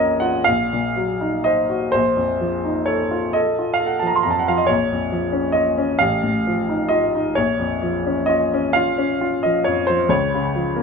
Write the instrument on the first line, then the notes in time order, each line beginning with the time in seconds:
grand piano
Already playing: A#1 F2 F3 C#4 A#4 C#5 D#5
0.20 F4 F#5
0.44 A#1 F5
0.73 A#2
0.96 F#3
1.21 D#4
1.44 C5 D#5
1.69 F#4
1.92 A#1 C5
2.16 F2
2.41 F3
2.64 D#4
2.86 A4 C#5
3.11 F4
3.33 A4 D#5
3.59 F4
3.74 F5
3.80 A4
3.86 F#5
3.99 F3 A5
4.07 A#5
4.16 C6
4.23 F2 A#5
4.31 A5
4.39 F#5
4.48 F3 F5
4.58 D#5
4.67 A#1 C#5
4.92 F2
5.12 F3
5.32 C#4
5.52 F4 D#5
5.78 C#4
5.99 A1 F5
6.23 A2
6.47 F3
6.69 D#4
6.89 F4 D#5
7.15 D#4
7.35 A#1 C#5
7.59 F2
7.83 F3
8.06 C#4
8.26 F4 D#5
8.54 C#4
8.73 F4 F5
8.98 C#4
9.21 F4
9.43 F3 D#5
9.64 F2 C#5
9.87 F3 C5
10.09 C#2 C#5
10.34 C#3
10.56 F3
10.76 A#3